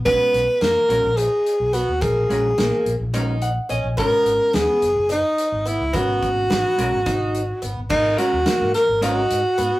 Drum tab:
CC |-------|-------|-------|-------|
HH |xxxxxxx|xxxxxxx|xxxxxxx|xxxxxxx|
SD |--o----|--o----|--o----|--o-o--|
BD |o------|o------|o------|oo--o--|

CC |x------|
HH |-xxxxxx|
SD |--oo---|
BD |o------|